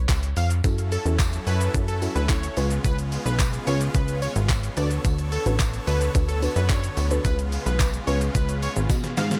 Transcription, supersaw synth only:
0.65 F#3 C#4 E4 A4
2.57 C#3 G#3 B3 F4
4.77 D3 B3 A4 C#5
7.25 C#3 G#3 F4

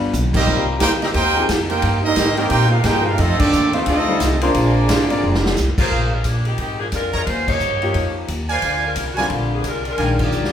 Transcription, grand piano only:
Already playing: G3 B3 D4 F4
0.47 G3 C4 F4 A#4
1.35 F3 A#3 D#4 G#4
2.85 F3 A#3 D#4 G#4
4.08 G3 C4 F4 A4
4.42 C4 F4 A#4 C5
5.10 C4 F4 A#4 D5
7.82 F3 A#3 D#4 G4
9.18 D3 G3 C4 F4
9.99 D#3 G#3 D4 G5

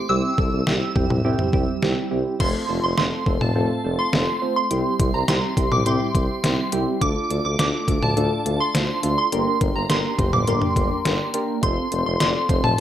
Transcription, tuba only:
0.09 C2
0.38 C2
0.53 C2
0.67 C2
0.96 C2
1.10 C2
1.25 C2
1.53 C2
1.82 C2
2.11 C2
2.40 F1
2.69 F1
2.83 F1
2.98 F1
3.26 F1
3.41 F1
3.56 F1
3.84 F1
4.13 F1
4.71 C2
5.00 C2
5.14 C2
5.28 C2
5.57 C2
5.72 C2
5.86 C2
6.15 C2
6.44 C2
6.73 C2
7.01 D2
7.30 D2
7.45 D2
7.59 D2
7.88 D2
8.02 D2
8.17 D2
8.46 D2
8.75 D2
9.03 D2
9.32 G1
9.61 G1
9.76 G1
9.90 G1
10.19 G1
10.33 G1
10.48 G1
10.76 G1
11.05 G1
11.63 F1
11.92 F1
12.06 F1
12.20 F1
12.49 F1
12.64 F1

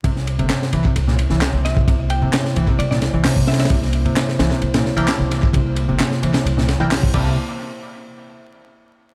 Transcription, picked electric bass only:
0.04 C3
0.39 C3
0.73 E3
0.85 C3
1.08 A#2
1.31 E3
1.42 C3
1.88 C3
2.22 C3
2.57 E3
2.69 C3
2.91 A#2
3.14 E3
3.25 C3
3.71 C3
4.05 C3
4.40 E3
4.51 C3
4.74 A#2
4.97 E3
5.08 C3
5.54 C3
5.89 C3
6.23 E3
6.34 C3
6.57 A#2
6.80 E3
6.91 C3
7.14 C3

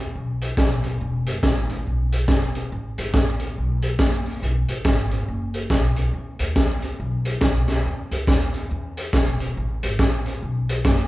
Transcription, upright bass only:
0.15 B1
0.58 B1
1.01 E1
1.27 F#1
1.43 G#1
1.87 B1
2.28 E1
2.72 A1
2.98 G#1
3.14 A1
3.58 B1
4.00 F#1
4.43 B1
4.69 A1
4.85 G#1
5.28 F#1
5.71 B1
6.13 E2
6.40 D#2
6.56 C#2
7.00 B1
7.42 B1
7.86 E2
8.11 C#2
8.28 D#2
8.71 E2
9.14 E1
9.57 A1
9.83 G#1
9.99 A1
10.43 B1
10.85 F#1

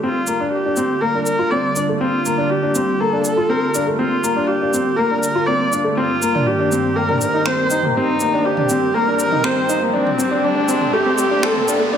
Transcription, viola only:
0.05 F4
0.53 G4
1.01 A#4
1.26 A#4
1.51 D5
2.01 F4
2.50 G4
3.00 A4
3.25 A4
3.50 A#4
3.99 F4
4.47 G4
4.97 A#4
5.21 A#4
5.47 D5
5.97 F4
6.47 G4
6.96 A#4
7.21 A#4
7.46 C5
7.96 D#4
8.45 G4
8.95 A#4
9.20 A#4
9.45 C5
9.94 C4
10.44 D4
10.94 G4
11.19 G4
11.45 A4
11.94 G4

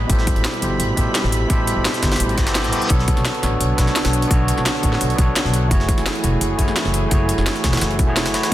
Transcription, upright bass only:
0.10 A1
0.36 A1
0.62 G1
0.80 A1
0.97 A1
1.24 A1
1.50 A1
1.77 A1
2.03 G1
2.20 A1
2.38 G1
2.65 A1
2.90 B1
3.17 B1
3.43 A1
3.61 B1
3.78 B1
4.05 B1
4.31 B1
4.58 B1
4.83 A1
5.01 B1
5.19 B1
5.45 B1
5.71 F#1
5.98 F#1
6.24 E1
6.41 F#1
6.59 F#1
6.85 F#1
7.11 F#1
7.38 F#1
7.64 E1
7.81 F#1
7.99 E1
8.26 F#1

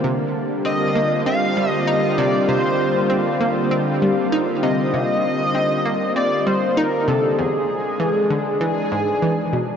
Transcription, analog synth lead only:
0.66 D#5
1.27 F5
1.71 D#5
1.88 D#5
2.18 D5
2.49 C5
4.63 D#5
6.16 D5
6.47 C5
6.77 A#4
7.08 A4
7.38 G#4

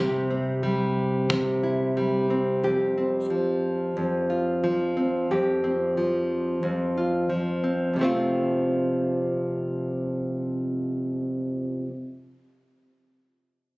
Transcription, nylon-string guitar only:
Already playing: C3 G3 C4 E4 G4
0.30 C4
0.63 G3
1.30 C3
1.63 E4
1.97 G3
2.30 C4
2.64 F2 G4
2.98 C4
3.30 F3
3.97 F2
4.30 F4
4.64 F3
4.97 C4
5.31 F2 G4
5.64 C4
5.97 F3
6.63 F2
6.98 F4
7.30 F3
7.64 C4
7.93 F2 C3
7.99 F3 A3 C4
8.04 F4

